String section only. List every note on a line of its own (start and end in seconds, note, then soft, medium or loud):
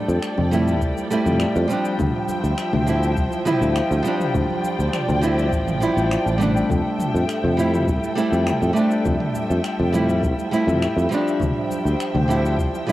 0.00 11.37 F3 medium
0.00 1.95 A4 medium
0.00 1.96 D5 medium
0.00 11.37 G5 medium
1.99 6.66 C5 medium
1.99 4.32 E5 medium
4.35 6.68 D5 medium
6.70 11.37 A4 medium
6.70 12.92 E5 medium
11.41 12.92 F3 medium
11.41 12.92 C5 medium
11.41 12.92 G5 medium